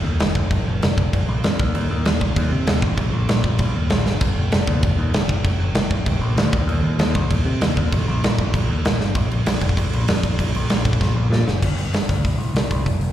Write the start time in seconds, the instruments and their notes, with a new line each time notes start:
0.04 picked electric bass D#2
0.19 picked electric bass F1, snare, crash
0.35 picked electric bass F1, kick
0.51 picked electric bass F1, kick, crash
0.67 picked electric bass F1
0.82 picked electric bass F1, snare, crash
0.97 picked electric bass F1, kick
1.13 picked electric bass F1, kick, crash
1.29 picked electric bass A#1
1.44 picked electric bass F2, snare, crash
1.60 picked electric bass D#2, kick
1.75 picked electric bass D#2, crash
1.91 picked electric bass D#2
2.05 picked electric bass D#2, snare, crash
2.21 picked electric bass C2, kick
2.36 picked electric bass D#2, kick, crash
2.51 picked electric bass C3
2.67 picked electric bass D#2, snare, crash
2.82 picked electric bass A1, kick
2.97 picked electric bass A#1, kick, crash
3.12 picked electric bass A#1
3.28 picked electric bass A#1, snare, crash
3.44 picked electric bass A#1, kick
3.58 picked electric bass A#1, kick, crash
3.76 picked electric bass D#2
3.90 picked electric bass A#1, snare, crash
4.06 picked electric bass G1, snare
4.21 picked electric bass F1, kick, splash, crash
4.38 picked electric bass F1
4.52 picked electric bass F1, snare, crash
4.67 picked electric bass D#2, kick
4.83 picked electric bass F1, kick, crash
4.97 picked electric bass D#2
5.14 picked electric bass F1, snare, crash
5.29 picked electric bass F1, kick
5.44 picked electric bass F1, kick, crash
5.59 picked electric bass F1
5.75 picked electric bass F1, snare, crash
5.91 picked electric bass F1, kick
6.06 picked electric bass F1, kick, crash
6.21 picked electric bass A#1
6.36 picked electric bass D2, snare, crash
6.53 picked electric bass D#2, kick
6.67 picked electric bass D#2, crash
6.83 picked electric bass D#2
6.99 picked electric bass D#2, snare, crash
7.15 picked electric bass C2, kick
7.31 picked electric bass D#2, kick, crash
7.45 picked electric bass C3
7.61 picked electric bass D#2, snare, crash
7.77 picked electric bass D#2, kick
7.92 picked electric bass A#1, kick, crash
8.07 picked electric bass A#1
8.24 picked electric bass A#1, snare, crash
8.39 picked electric bass A#1, kick
8.54 picked electric bass A#1, kick, crash
8.69 picked electric bass D#2
8.84 picked electric bass A#1, snare, crash
8.99 picked electric bass G1, snare
9.15 picked electric bass A#1, kick, crash
9.31 crash
9.46 picked electric bass A#1, snare, crash
9.61 picked electric bass F1, kick, crash
9.69 kick
9.77 picked electric bass A#1, kick, crash
9.93 picked electric bass A#1, crash
10.08 picked electric bass F2, snare, crash
10.23 picked electric bass A#1, kick, crash
10.39 picked electric bass A#1, kick, crash
10.55 picked electric bass A#1, crash
10.70 picked electric bass A#1, snare, crash
10.85 picked electric bass A#1, kick, crash
10.93 kick
11.01 picked electric bass A#1, kick, snare
11.16 picked electric bass A#1
11.30 picked electric bass A#2, snare
11.47 picked electric bass F#1, snare
11.62 picked electric bass G1, kick, crash
11.76 picked electric bass G1, open hi-hat
11.92 picked electric bass G1, snare, open hi-hat
12.09 picked electric bass D2, kick, open hi-hat
12.24 picked electric bass C2, kick, open hi-hat
12.38 picked electric bass C2, open hi-hat
12.54 picked electric bass C2, snare, open hi-hat
12.71 picked electric bass C2, kick, open hi-hat
12.86 picked electric bass F1, kick, open hi-hat
13.01 picked electric bass F1, open hi-hat